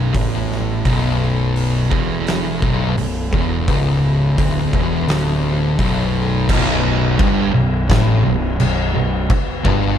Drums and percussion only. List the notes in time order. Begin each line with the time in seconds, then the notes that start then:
0.14 kick, open hi-hat
0.52 snare
0.85 kick, open hi-hat
1.56 open hi-hat
1.91 kick
2.27 snare, open hi-hat
2.62 kick
2.98 open hi-hat
3.33 kick
3.68 kick, open hi-hat
4.38 kick, open hi-hat
4.73 kick
5.08 snare, open hi-hat
5.79 kick, open hi-hat
6.49 kick, crash
7.19 kick, crash
7.90 kick, snare, crash
8.60 crash
9.30 kick, crash
9.65 kick